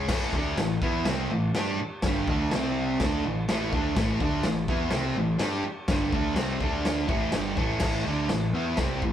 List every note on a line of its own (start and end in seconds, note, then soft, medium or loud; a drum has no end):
0.08 0.31 A1 medium
0.08 0.32 A2 medium
0.08 0.32 E3 medium
0.08 0.33 A3 medium
0.08 kick loud
0.08 snare loud
0.08 crash loud
0.08 crash medium
0.33 0.55 D2 loud
0.33 0.57 D3 loud
0.33 0.57 A3 medium
0.33 0.57 D4 medium
0.33 kick loud
0.56 0.79 A1 medium
0.56 0.77 A2 medium
0.56 0.77 E3 medium
0.56 snare loud
0.56 crash medium
0.82 1.04 E2 medium
0.82 1.05 E3 medium
0.82 1.05 B3 loud
0.82 1.06 E4 loud
0.82 kick loud
1.05 1.28 C2 loud
1.05 1.30 C3 medium
1.05 1.30 G3 medium
1.05 1.30 C4 loud
1.05 snare loud
1.05 crash medium
1.30 1.52 A1 medium
1.30 1.50 A2 medium
1.30 1.50 E3 medium
1.54 1.76 G2 loud
1.54 1.78 G3 medium
1.54 1.79 D4 loud
1.54 1.79 G4 loud
1.54 snare loud
1.54 crash medium
1.78 muted picked electric bass stroke soft
1.78 muted distorted electric guitar stroke medium
2.02 2.25 G1 medium
2.02 2.27 G2 medium
2.02 2.27 D3 loud
2.02 2.27 G3 loud
2.02 kick loud
2.02 snare loud
2.02 crash medium
2.28 2.49 D2 loud
2.28 2.51 D3 medium
2.28 2.52 A3 loud
2.28 2.52 D4 loud
2.28 kick loud
2.50 2.95 C2 loud
2.50 3.00 C3 loud
2.50 snare loud
2.50 crash medium
2.54 3.00 G3 medium
2.54 3.01 C4 loud
3.00 3.22 D2 medium
3.00 3.23 D3 medium
3.00 3.24 A3 medium
3.00 3.24 D4 loud
3.00 kick medium
3.00 snare loud
3.00 crash medium
3.24 3.46 A1 medium
3.24 3.44 A2 medium
3.24 3.44 E3 medium
3.49 3.71 A1 medium
3.49 3.72 A2 loud
3.49 3.72 E3 loud
3.49 3.72 A3 loud
3.49 snare loud
3.49 crash medium
3.72 3.94 D2 medium
3.72 3.95 D3 medium
3.72 3.97 A3 loud
3.72 3.97 D4 loud
3.72 kick loud
3.96 4.18 A1 medium
3.96 4.19 A2 loud
3.96 4.20 E3 medium
3.96 4.20 A3 loud
3.96 kick loud
3.96 snare loud
3.96 crash medium
4.20 4.43 D2 loud
4.20 4.44 D3 medium
4.20 4.44 A3 medium
4.20 4.45 D4 loud
4.20 kick loud
4.43 4.66 A1 medium
4.43 4.64 A2 medium
4.43 4.63 E3 medium
4.43 snare loud
4.43 crash medium
4.68 4.90 E2 loud
4.68 4.92 E3 loud
4.68 4.92 B3 loud
4.68 4.92 E4 loud
4.68 kick loud
4.90 5.14 C2 loud
4.90 5.16 C3 medium
4.90 5.16 G3 loud
4.90 5.16 C4 loud
4.90 snare loud
4.90 crash medium
5.15 5.38 A1 medium
5.15 5.36 A2 medium
5.15 5.36 E3 medium
5.39 5.62 G2 loud
5.39 5.63 G3 medium
5.39 5.63 D4 medium
5.39 5.64 G4 loud
5.39 snare loud
5.39 crash medium
5.63 muted picked electric bass stroke soft
5.63 muted distorted electric guitar stroke medium
5.88 6.11 G1 medium
5.88 6.12 G2 medium
5.88 6.11 D3 loud
5.88 6.13 G3 medium
5.88 kick loud
5.88 snare loud
5.88 crash medium
6.12 6.35 D2 medium
6.12 6.35 D3 medium
6.12 6.35 A3 medium
6.12 6.36 D4 loud
6.12 kick medium
6.35 6.59 C2 loud
6.35 6.59 C3 medium
6.35 6.60 G3 loud
6.35 6.60 C4 loud
6.35 snare loud
6.35 crash medium
6.61 7.06 D2 medium
6.61 7.07 D3 loud
6.61 7.07 A3 loud
6.61 7.08 D4 loud
6.61 kick loud
6.85 snare loud
6.85 crash medium
7.07 7.31 A1 loud
7.07 7.32 A2 loud
7.07 7.32 E3 medium
7.07 7.32 A3 loud
7.07 kick loud
7.32 7.56 G1 loud
7.32 7.56 G2 medium
7.32 7.56 D3 medium
7.32 7.57 G3 loud
7.32 snare loud
7.32 crash medium
7.57 7.80 A1 medium
7.57 7.79 A2 medium
7.57 7.80 E3 medium
7.57 7.81 A3 loud
7.57 kick loud
7.80 8.04 A1 medium
7.80 8.04 A2 medium
7.80 8.05 E3 loud
7.80 8.04 A3 loud
7.80 kick loud
7.80 snare loud
7.80 crash loud
7.80 crash medium
8.04 8.27 D2 medium
8.04 8.29 D3 medium
8.04 8.29 A3 loud
8.04 8.29 D4 loud
8.29 8.52 A1 medium
8.29 8.49 A2 medium
8.29 8.49 E3 medium
8.29 snare loud
8.29 crash medium
8.53 8.76 E2 medium
8.53 8.77 E3 medium
8.53 8.77 B3 loud
8.53 8.78 E4 loud
8.77 9.00 C2 medium
8.77 9.01 C3 medium
8.77 9.02 G3 medium
8.77 9.02 C4 loud
8.77 kick loud
8.77 snare loud
8.77 crash medium
9.02 9.13 A1 medium
9.02 9.13 A2 medium
9.02 9.13 E3 medium
9.02 kick loud